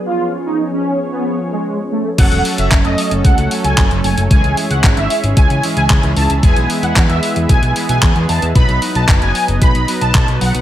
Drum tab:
CC |----------------|x---------------|----------------|----------------|
HH |----------------|xxoxxxoxxxoxxxox|xxoxxxoxxxoxxxox|xxoxxxoxxxoxxxox|
CP |----------------|----x-------x---|----x-------x---|----x-------x---|
BD |----------------|o---o---o---o---|o---o---o---o---|o---o---o---o---|

CC |----------------|
HH |xxoxxxoxxxoxxxox|
CP |----x-------x---|
BD |o---o---o---o---|